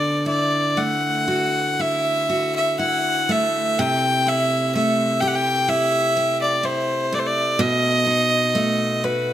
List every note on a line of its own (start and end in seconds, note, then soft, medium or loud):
0.00 3.78 D3 medium
0.00 0.29 F#4 soft
0.00 0.26 D5 medium
0.26 1.79 E4 soft
0.26 0.79 D5 medium
0.77 3.29 A3 soft
0.77 1.82 F#5 medium
1.28 2.28 F#4 soft
1.79 2.79 E4 soft
1.79 2.55 E5 medium
2.30 3.88 F#4 soft
2.56 2.79 E5 medium
2.79 4.26 E4 soft
2.79 3.33 F#5 medium
3.29 4.75 A3 soft
3.29 3.80 E5 medium
3.79 7.59 C3 medium
3.79 4.30 G5 medium
4.27 5.67 E4 soft
4.27 4.74 E5 medium
4.75 7.12 A3 soft
4.75 5.22 E5 medium
5.20 6.16 G4 medium
5.20 5.29 G5 medium
5.28 5.37 F#5 medium
5.35 5.70 G5 medium
5.68 6.62 E4 soft
5.68 6.39 E5 medium
6.17 7.70 G4 soft
6.42 6.67 D5 medium
6.63 7.69 E4 soft
6.63 7.16 C5 medium
7.12 8.09 A3 soft
7.12 7.21 D5 medium
7.19 7.28 C5 medium
7.27 7.62 D5 medium
7.59 9.33 B2 medium
7.59 9.05 D#5 medium
8.06 9.33 D#4 medium
8.55 9.33 A3 medium
9.04 9.33 F#4 medium
9.04 9.33 B4 medium